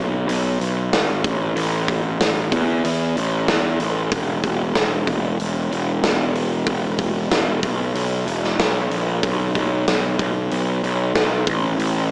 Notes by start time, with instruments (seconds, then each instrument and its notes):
Already playing: picked electric bass B1
0.27 picked electric bass B1, open hi-hat
0.60 picked electric bass B1, open hi-hat
0.92 picked electric bass G#1, snare, open hi-hat
1.24 picked electric bass A1, kick, open hi-hat
1.55 picked electric bass A1, open hi-hat
1.88 kick, open hi-hat
2.20 picked electric bass A1, snare, open hi-hat
2.51 picked electric bass E2, kick, open hi-hat
2.85 picked electric bass E2, open hi-hat
3.17 picked electric bass A1, open hi-hat
3.48 picked electric bass E2, snare, open hi-hat
3.80 picked electric bass A1, open hi-hat
4.12 picked electric bass E1, kick, open hi-hat
4.44 picked electric bass E1, kick, open hi-hat
4.75 picked electric bass E1, snare, open hi-hat
5.07 picked electric bass E1, kick, open hi-hat
5.40 picked electric bass E1, open hi-hat
5.71 picked electric bass E1, open hi-hat
6.03 picked electric bass E1, snare, open hi-hat
6.35 open hi-hat
6.66 picked electric bass E1, kick, open hi-hat
6.99 kick, open hi-hat
7.29 picked electric bass E1, snare, open hi-hat
7.62 picked electric bass B1, kick, open hi-hat
7.94 picked electric bass B1, open hi-hat
8.25 picked electric bass E1, open hi-hat
8.44 snare
8.59 picked electric bass B1, snare, open hi-hat
8.90 picked electric bass A#1, open hi-hat
9.23 picked electric bass B1, kick, open hi-hat
9.55 picked electric bass B1, kick, open hi-hat
9.88 picked electric bass B1, snare, open hi-hat
10.19 picked electric bass B1, kick, open hi-hat
10.51 picked electric bass B1, open hi-hat
10.83 picked electric bass B1, open hi-hat
11.14 picked electric bass B1, snare, open hi-hat
11.47 picked electric bass A1, kick, open hi-hat
11.77 picked electric bass A1, open hi-hat